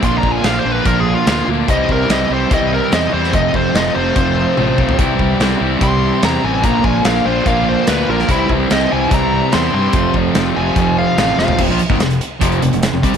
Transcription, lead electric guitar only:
\new Staff \with { instrumentName = "Lead electric guitar" } { \time 4/4 \key f \major \tempo 4 = 145 \tuplet 3/2 { c'''8 bes''8 aes''8 f''8 c''8 b'8 bes'8 aes'8 f'8 } f'8 r8 | ees''8 bes'8 ees''8 c''8 ees''8 bes'8 ees''8 c''8 | ees''8 c''8 ees''8 c''8 c''2 | r2 c'''4 bes''8 aes''8 |
bes''8 aes''8 f''8 c''8 f''8 c''8 b'8 bes'8 | e'8 r8 ees''8 aes''8 bes''4 c'''8 c'''8~ | c'''8 r4 aes''4 f''8 f''8 f''8 | r1 | }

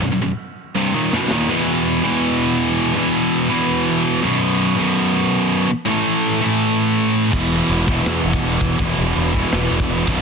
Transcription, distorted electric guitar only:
\new Staff \with { instrumentName = "Distorted electric guitar" } { \clef bass \time 4/4 \tempo 4 = 164 <b,, fis,>16 <b,, fis,>16 <b,, fis,>16 r4 r16 <c, g, c>8 <dis, ais, dis>8 <b,, fis, b,>8 <dis, ais, dis>8 | <e, b, e>4. <e, b, e>2~ <e, b, e>8 | <e, b, e>4. <e, b, e>2 <b,, fis, b,>8~ | <b,, fis, b,>4 <b,, fis, b,>2~ <b,, fis, b,>8 r8 |
<a, e a>4. <a, e a>2~ <a, e a>8 | <e, b, e>4. <e, b, e>2~ <e, b, e>8 | <e, b, e>4. <e, b, e>2 <b,, fis, b,>8 | }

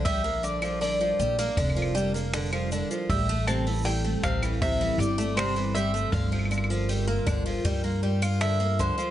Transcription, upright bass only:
\new Staff \with { instrumentName = "Upright bass" } { \clef bass \time 4/4 \key bes \lydian \tempo 4 = 79 bes,,4. bes,,8 f,,4. r8 | a,,4. a,,4 g,,4. | g,,4. g,,8 g,4. r8 | }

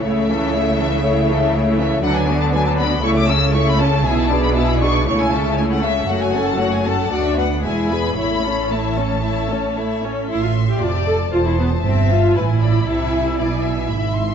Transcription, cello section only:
\new Staff \with { instrumentName = "Cello section" } { \clef bass \time 4/4 \key a \major \tempo 4 = 117 cis1 | d2 cis2 | b,2 cis2 | fis,2 d,4 e,4 |
a,2.~ a,8 r8 | \key a \minor a,4 f,4 e,4 g,4 | a,4 c4 b,4 gis,4 | }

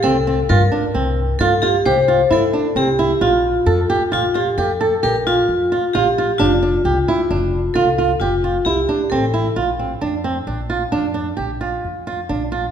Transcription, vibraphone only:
\new Staff \with { instrumentName = "Vibraphone" } { \time 7/4 \key bes \lydian \tempo 4 = 132 a'4 bes'2 a'8 g'8 c''4 a'4 g'4 | f'2 f'8 g'8 a'4 bes'8 f'4. g'4 | f'2. a'4 f'4 g'4 a'4 | r1. r4 | }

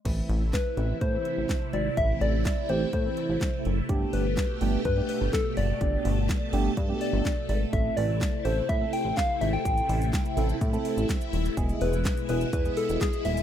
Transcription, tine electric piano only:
\new Staff \with { instrumentName = "Tine electric piano" } { \time 4/4 \key a \minor \tempo 4 = 125 <e a c' e'>8. r8. <e a c' e'>8 r16 <e a c' e'>4 r8. | <e a c' e'>8. r8. <e a c' g'>8 r16 <e a c' e'>4 r8. | <a b d' g'>8. r8. <a b d' g'>8 r16 <a b d' g'>4 r8. | <a b d' g'>8. r8. <a b d' g'>8 r16 <a b d' g'>4 r8. |
<a c' e' a'>8. r8. <a c' e' a'>8 r16 <a c' e' a'>4 r8. | <a c' e' a'>8. r8. <a c' e' a'>8 r16 <a c' e' a'>4 r8. | <gis b e' gis'>8. r8. <gis b e' gis'>8 r16 <gis b e' gis'>4 r8. | }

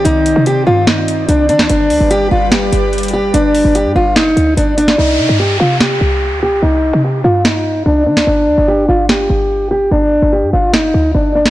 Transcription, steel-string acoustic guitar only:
\new Staff \with { instrumentName = "Steel-string acoustic guitar" } { \time 4/4 \key c \minor \tempo 4 = 146 ees'4 g'8 f'8 ees'4 d'8 d'8 | d'4 g'8 f'8 g'4. g'8 | d'4 g'8 f'8 ees'4 d'8 d'8 | ees'4 g'8 f'8 g'4. g'8 |
ees'4 g'8 f'8 ees'4 d'8 d'8 | d'4 g'8 f'8 g'4. g'8 | d'4 g'8 f'8 ees'4 d'8 d'8 | }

